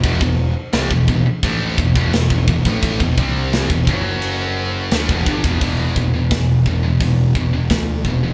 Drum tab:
CC |x---x---x---x---|x---x---x---x---|----------------|
HH |----------------|----------------|o---o---o---o---|
SD |----o-------o---|----o-------o---|----o-------o---|
BD |oo---oo-o-oo-ooo|ooo--oo------ooo|o-o-o-o-o-o-o-o-|